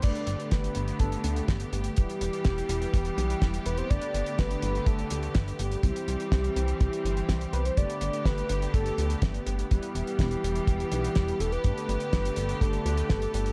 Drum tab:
CC |x---------------|----------------|----------------|----------------|
HH |xxxxxxxxxxxxxxxx|xxxxxxxxxxxxxxxx|xxxxxxxxxxxxxxxx|xxxxxxxxxxxxxxxx|
SD |----o-------o---|----o-------o---|----o-------o---|----o-------o---|
BD |o---o---o---o---|o---o---o---o---|o---o---o---o---|o---o---o---o---|

CC |----------------|----------------|----------------|
HH |xxxxxxxxxxxxxxxx|xxxxxxxxxxxxxxxx|xxxxxxxxxxxxxxxx|
SD |----o-------o---|----o-------o---|----o-------o---|
BD |o---o---o---o---|o---o---o---o---|o---o---o---o---|